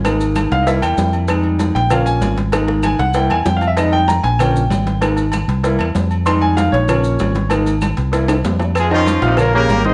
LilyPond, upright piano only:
<<
  \new Staff \with { instrumentName = "Upright piano" } { \time 4/4 \key f \minor \tempo 4 = 193 r4. f''8 <ees'' e''>8 g''4 r8 | r4. g''8 f''8 aes''4 r8 | r4 aes''8 ges''8 g''8 aes''8 \tuplet 3/2 { g''8 f''8 e''8 } | ees''8 g''8 bes''8 aes''8 g''2 |
r1 | c'''8 aes''8 f''8 des''2~ des''8 | r1 | r8 <ees' c'' ees''>4 <f f' f''>8 <bes bes' des''>8 <bes bes' des''>4 <ees ees' ees''>8 | }
  \new Staff \with { instrumentName = "Upright piano" } { \time 4/4 \key f \minor <aes bes ees'>2 <g bes e'>2 | <g aes ees'>4. r8 <f bes des'>4. r8 | <aes bes ees'>4. r8 <g bes e'>8 r4. | <g aes ees'>8 r4. <f bes des'>8 r4. |
<aes bes ees'>8 r4. <g bes e'>8 r4. | <g aes ees'>2 <f bes des'>4. r8 | <aes bes ees'>8 r4. <g bes e'>8 r4. | r1 | }
>>